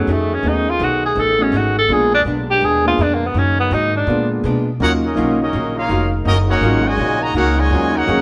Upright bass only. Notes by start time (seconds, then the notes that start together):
0.07 F2
0.43 D#2
0.79 B1
1.16 A1
1.52 G#1
1.88 A#1
2.25 B1
2.61 D#2
2.98 F2
3.34 F#2
3.71 G#2
4.07 A#2
4.44 B2
4.80 D#2
5.17 B1
5.53 A#1
5.89 F1
6.25 F#1
6.61 G#1
6.98 A#1
7.34 C#2
7.70 D#2
8.07 F2